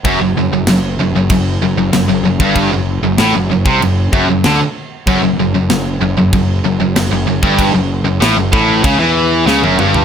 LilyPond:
<<
  \new Staff \with { instrumentName = "Distorted electric guitar" } { \clef bass \time 4/4 \key fis \minor \tempo 4 = 96 fis,16 fis,16 fis,16 fis,16 fis,8 fis,16 fis,16 fis,8 fis,16 fis,16 fis,16 fis,16 fis,16 g,16~ | g,16 fis,8 fis,16 a,16 fis,16 fis,16 bis,16 fis,8 fis,16 fis,16 d16 r8. | fis,16 fis,16 fis,16 fis,16 fis,8 fis,16 fis,16 fis,8 fis,16 fis,16 fis,16 fis,16 fis,16 g,16~ | g,16 fis,8 fis,16 a,16 fis,16 a,8 cis16 e8. cis16 fis,16 g,8 | }
  \new Staff \with { instrumentName = "Distorted electric guitar" } { \clef bass \time 4/4 \key fis \minor fis,16 fis,16 fis,16 fis,16 fis,8 fis,16 fis,16 fis,8 fis,16 fis,16 fis,16 fis,16 fis,16 g,16~ | g,16 fis,8 fis,16 a,16 fis,16 fis,16 bis,16 fis,8 fis,16 fis,16 d16 r8. | fis,16 fis,16 fis,16 fis,16 fis,8 fis,16 fis,16 fis,8 fis,16 fis,16 fis,16 fis,16 fis,16 g,16~ | g,16 fis,8 fis,16 a,16 fis,16 a,8 cis16 e8. cis16 fis,16 g,8 | }
  \new Staff \with { instrumentName = "Overdriven electric guitar" } { \clef bass \time 4/4 \key fis \minor fis,16 fis,16 fis,16 fis,16 fis,8 fis,16 fis,16 fis,8 fis,16 fis,16 fis,16 fis,16 fis,16 g,16~ | g,16 fis,8 fis,16 a,16 fis,16 fis,16 bis,16 fis,8 fis,16 fis,16 d16 r8. | fis,16 fis,16 fis,16 fis,16 fis,8 fis,16 fis,16 fis,8 fis,16 fis,16 fis,16 fis,16 fis,16 g,16~ | g,16 fis,8 fis,16 a,16 fis,16 a,8 cis16 e8. cis16 fis,16 g,8 | }
  \new Staff \with { instrumentName = "Picked electric bass" } { \clef bass \time 4/4 \key fis \minor fis,,16 fis,,16 fis,,16 fis,,16 fis,,8 fis,,16 fis,,16 fis,,8 fis,,16 fis,,16 fis,,16 fis,,16 fis,,16 g,,16~ | g,,16 fis,,8 fis,,16 a,,16 fis,,16 fis,,16 bis,,16 fis,,8 fis,,16 fis,,16 d,16 r8. | fis,,16 fis,,16 fis,,16 fis,,16 fis,,8 fis,,16 fis,,16 fis,,8 fis,,16 fis,,16 fis,,16 fis,,16 fis,,16 g,,16~ | g,,16 fis,,8 fis,,16 a,,16 fis,,16 a,,8 cis,16 e,8. cis,16 fis,,16 g,,8 | }
  \new DrumStaff \with { instrumentName = "Drums" } \drummode { \time 4/4 <cymc bd>4 <cymc sn>4 <cymc bd>4 <cymc sn>8. bd16 | <cymc bd>4 <cymc sn>8. bd16 cymc8 bd8 <cymc sn>4 | <cymc bd>4 <cymc sn>4 <cymc bd>4 <cymc sn>8. bd16 | <cymc bd>4 <cymc sn>8 bd8 <cymc bd>4 sn16 tommh16 toml16 tomfh16 | }
>>